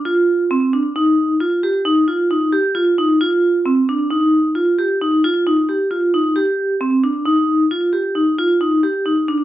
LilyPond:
\new Staff \with { instrumentName = "Vibraphone" } { \time 7/4 \key c \minor \tempo 4 = 133 f'4 c'8 d'8 ees'4 f'8 g'8 ees'8 f'8 ees'8 g'8 f'8 ees'8 | f'4 c'8 d'8 ees'4 f'8 g'8 ees'8 f'8 ees'8 g'8 f'8 ees'8 | g'4 c'8 d'8 ees'4 f'8 g'8 ees'8 f'8 ees'8 g'8 ees'8 d'8 | }